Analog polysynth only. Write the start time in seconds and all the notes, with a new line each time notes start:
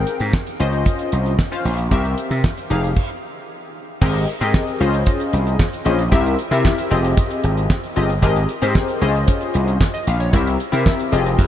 Already playing: C4 G#4 A#4 G5
0.60 C#4 F4 C5 D#5
1.52 C#4 F4 C5 F5
1.91 C4 G4 A#4 E5
2.70 D#4 G4 G#4 F5
4.01 C4 G4 G#4 A#4 D#5
4.41 C4 G4 G#4 A#4 D#5
4.80 C#4 F4 G#4 C5 D#5
5.85 C#4 F4 G#4 C5 D#5
6.12 C4 E4 G4 A#4 E5
6.51 C4 E4 G4 A#4 E5
6.91 C4 F4 G4 G#4 D#5
7.96 C4 F4 G4 G#4 D#5
8.22 C4 G4 G#4 A#4 D#5
8.62 C4 G4 G#4 A#4 C5
9.01 C#4 E4 G#4 C5 D#5
9.08 F4
9.94 D#5
10.07 F5
10.20 C#5
10.33 C4 E4 G4 A#4 E5
10.72 C4 E4 G4 A#4 E5
11.12 C4 F4 G4 G#4 D#5